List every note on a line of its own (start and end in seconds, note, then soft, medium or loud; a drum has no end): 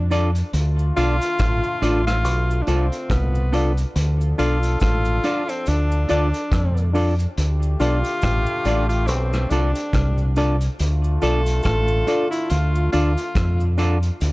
0.00 0.42 F2 loud
0.11 0.29 D4 medium
0.11 0.28 D4 medium
0.11 0.30 F4 loud
0.11 0.28 F4 medium
0.11 0.30 A4 loud
0.11 0.29 A4 medium
0.11 0.30 D5 loud
0.11 0.29 D5 loud
0.11 closed hi-hat medium
0.11 cabasa medium
0.35 closed hi-hat soft
0.35 cabasa medium
0.53 0.90 D2 loud
0.53 3.49 D3 medium
0.53 3.49 A3 medium
0.53 3.49 F4 loud
0.53 closed hi-hat medium
0.53 cabasa medium
0.79 cabasa medium
0.96 1.18 B1 medium
0.96 1.14 D4 medium
0.96 1.15 D4 medium
0.96 2.03 F4 loud
0.96 1.14 F4 medium
0.96 1.15 F4 medium
0.96 1.14 A4 medium
0.96 1.16 A4 medium
0.96 1.16 D5 loud
0.96 1.14 D5 loud
0.96 closed hi-hat medium
0.96 cabasa medium
1.21 closed hi-hat medium
1.21 cabasa medium
1.39 1.61 A1 medium
1.39 kick loud
1.39 cross-stick loud
1.39 closed hi-hat loud
1.39 cabasa medium
1.64 cabasa medium
1.82 2.24 A1 medium
1.82 2.00 D4 loud
1.82 1.99 D4 medium
1.82 2.01 F4 loud
1.82 2.00 F4 medium
1.82 2.01 A4 medium
1.82 2.00 A4 medium
1.82 2.01 D5 loud
1.82 2.00 D5 loud
1.82 closed hi-hat medium
1.82 cabasa medium
2.07 2.64 F4 loud
2.07 cross-stick medium
2.07 closed hi-hat medium
2.07 cabasa medium
2.24 2.61 B1 loud
2.24 closed hi-hat medium
2.24 cabasa medium
2.51 cabasa medium
2.62 2.70 D4 medium
2.67 2.89 C2 medium
2.67 3.14 C4 medium
2.67 2.86 D4 medium
2.67 2.85 D4 medium
2.67 2.86 F4 medium
2.67 2.85 F4 medium
2.67 2.86 A4 medium
2.67 2.85 A4 medium
2.67 2.86 D5 medium
2.67 2.85 D5 loud
2.67 closed hi-hat medium
2.67 cabasa medium
2.92 closed hi-hat soft
2.92 cabasa medium
3.10 3.84 C2 loud
3.10 3.79 B3 medium
3.10 kick loud
3.10 cross-stick loud
3.10 closed hi-hat loud
3.10 cabasa medium
3.35 cabasa soft
3.52 3.71 D4 medium
3.52 3.70 D4 medium
3.52 3.71 F4 medium
3.52 3.70 F4 medium
3.52 3.72 A4 medium
3.52 3.71 A4 medium
3.52 3.72 D5 medium
3.52 3.71 D5 loud
3.52 closed hi-hat medium
3.52 cabasa medium
3.77 closed hi-hat soft
3.77 cabasa medium
3.96 4.33 D2 loud
3.96 6.91 F3 medium
3.96 6.91 D4 medium
3.96 6.91 A4 medium
3.96 closed hi-hat medium
3.96 cabasa medium
4.21 cabasa medium
4.38 4.76 B1 medium
4.38 4.55 D4 loud
4.38 4.57 D4 medium
4.38 4.56 F4 medium
4.38 4.57 F4 medium
4.38 4.78 F4 loud
4.38 4.56 A4 medium
4.38 4.57 A4 medium
4.38 4.56 D5 loud
4.38 4.58 D5 medium
4.38 closed hi-hat medium
4.38 cabasa medium
4.63 closed hi-hat medium
4.63 cabasa medium
4.80 5.18 A1 medium
4.80 5.51 F4 loud
4.80 kick loud
4.80 cross-stick loud
4.80 closed hi-hat loud
4.80 cabasa medium
5.05 cabasa medium
5.24 5.41 D4 medium
5.24 5.43 D4 medium
5.24 5.41 F4 medium
5.24 5.43 F4 medium
5.24 5.41 A4 medium
5.24 5.43 A4 loud
5.24 5.41 D5 medium
5.24 5.43 D5 loud
5.24 closed hi-hat medium
5.24 cabasa medium
5.49 5.70 C4 medium
5.49 closed hi-hat soft
5.49 cabasa medium
5.66 6.04 D2 loud
5.66 6.10 D4 loud
5.66 closed hi-hat medium
5.66 cabasa medium
5.91 cabasa medium
6.09 6.31 D2 medium
6.09 6.28 D4 loud
6.09 6.26 D4 loud
6.09 6.91 D4 medium
6.09 6.26 F4 medium
6.09 6.28 F4 medium
6.09 6.27 A4 medium
6.09 6.28 A4 medium
6.09 6.27 D5 loud
6.09 6.28 D5 loud
6.09 closed hi-hat medium
6.09 cabasa medium
6.34 closed hi-hat medium
6.34 cabasa medium
6.52 7.25 F2 loud
6.52 kick loud
6.52 cross-stick loud
6.52 closed hi-hat loud
6.52 cabasa medium
6.77 cabasa soft
6.94 7.11 D4 loud
6.94 7.13 D4 medium
6.94 7.12 F4 medium
6.94 7.13 F4 medium
6.94 7.12 A4 medium
6.94 7.14 A4 medium
6.94 7.12 D5 loud
6.94 7.14 D5 medium
6.94 open hi-hat soft
6.94 cabasa medium
7.19 closed hi-hat soft
7.19 cabasa medium
7.38 7.74 D2 loud
7.38 10.33 D3 medium
7.38 10.33 A3 medium
7.38 10.33 G4 medium
7.38 closed hi-hat medium
7.38 cabasa medium
7.63 cabasa medium
7.80 8.02 B1 loud
7.80 7.97 D4 medium
7.80 7.99 D4 medium
7.80 8.86 F4 loud
7.80 7.97 F4 medium
7.80 7.99 F4 medium
7.80 7.98 A4 medium
7.80 7.99 A4 medium
7.80 7.98 D5 loud
7.80 7.99 D5 medium
7.80 closed hi-hat medium
7.80 cabasa medium
8.04 closed hi-hat medium
8.04 cabasa medium
8.21 8.45 A1 medium
8.21 kick loud
8.21 cross-stick loud
8.21 closed hi-hat loud
8.21 cabasa medium
8.46 cabasa medium
8.65 9.08 A1 loud
8.65 8.83 D4 medium
8.65 8.84 D4 loud
8.65 8.83 F4 medium
8.65 8.85 F4 loud
8.65 8.83 A4 medium
8.65 8.85 A4 loud
8.65 8.83 D5 loud
8.65 8.85 D5 loud
8.65 closed hi-hat medium
8.65 cabasa medium
8.89 9.09 F4 loud
8.89 closed hi-hat medium
8.89 cabasa medium
9.07 9.45 B1 loud
9.07 9.52 C4 medium
9.07 closed hi-hat medium
9.07 cabasa medium
9.33 cross-stick medium
9.33 cabasa medium
9.50 9.72 C2 medium
9.50 10.36 D4 medium
9.50 9.70 D4 medium
9.50 9.68 D4 loud
9.50 9.68 F4 medium
9.50 9.70 F4 medium
9.50 9.70 A4 loud
9.50 9.69 A4 medium
9.50 9.69 D5 loud
9.50 9.70 D5 loud
9.50 closed hi-hat medium
9.50 cabasa medium
9.75 closed hi-hat medium
9.75 cabasa medium
9.93 10.67 C2 loud
9.93 kick loud
9.93 cross-stick loud
9.93 closed hi-hat loud
9.93 cabasa medium
10.18 cabasa soft
10.36 10.55 D4 medium
10.36 10.54 D4 medium
10.36 10.55 F4 loud
10.36 10.54 F4 medium
10.36 10.54 A4 medium
10.36 10.56 A4 medium
10.36 10.56 D5 loud
10.36 10.54 D5 loud
10.36 closed hi-hat medium
10.36 cabasa medium
10.61 closed hi-hat soft
10.61 cabasa medium
10.79 11.17 D2 loud
10.79 13.75 D3 medium
10.79 13.75 A3 loud
10.79 13.75 F4 medium
10.79 closed hi-hat loud
10.79 cabasa medium
11.04 cabasa medium
11.21 11.59 B1 medium
11.21 11.41 D4 medium
11.21 11.39 D4 loud
11.21 11.41 F4 medium
11.21 11.39 F4 medium
11.21 11.62 A4 loud
11.21 11.41 A4 loud
11.21 11.39 A4 medium
11.21 11.41 D5 loud
11.21 11.40 D5 loud
11.21 closed hi-hat medium
11.21 cabasa soft
11.46 closed hi-hat medium
11.46 cabasa medium
11.63 12.02 A1 medium
11.63 12.28 A4 loud
11.63 kick loud
11.63 cross-stick loud
11.63 closed hi-hat loud
11.63 cabasa medium
11.88 cabasa medium
12.07 12.24 D4 medium
12.07 12.26 D4 medium
12.07 12.25 F4 medium
12.07 12.26 F4 medium
12.07 12.25 A4 medium
12.07 12.26 A4 medium
12.07 12.25 D5 loud
12.07 12.27 D5 medium
12.07 closed hi-hat medium
12.07 cabasa medium
12.31 12.52 E4 medium
12.31 closed hi-hat medium
12.31 cabasa medium
12.50 12.88 D2 loud
12.50 12.92 F4 medium
12.50 closed hi-hat medium
12.50 cabasa medium
12.75 cabasa medium
12.92 13.15 D2 loud
12.92 13.12 D4 medium
12.92 13.10 D4 loud
12.92 13.74 F4 medium
12.92 13.12 F4 medium
12.92 13.10 F4 medium
12.92 13.10 A4 medium
12.92 13.12 A4 medium
12.92 13.12 D5 loud
12.92 13.10 D5 loud
12.92 closed hi-hat medium
12.92 cabasa medium
13.17 closed hi-hat medium
13.17 cabasa medium
13.35 14.09 F2 medium
13.35 kick loud
13.35 cross-stick loud
13.35 closed hi-hat loud
13.35 cabasa medium
13.60 cabasa soft
13.77 13.95 D4 medium
13.77 13.97 D4 loud
13.77 13.95 F4 medium
13.77 13.97 F4 loud
13.77 13.96 A4 medium
13.77 13.97 A4 loud
13.77 13.96 D5 loud
13.77 13.97 D5 loud
13.77 closed hi-hat medium
13.77 cabasa medium
14.03 closed hi-hat soft
14.03 cabasa medium
14.21 14.32 D2 loud
14.21 14.32 A2 medium
14.21 14.32 F3 medium
14.21 14.32 D4 medium
14.21 closed hi-hat medium
14.21 cabasa medium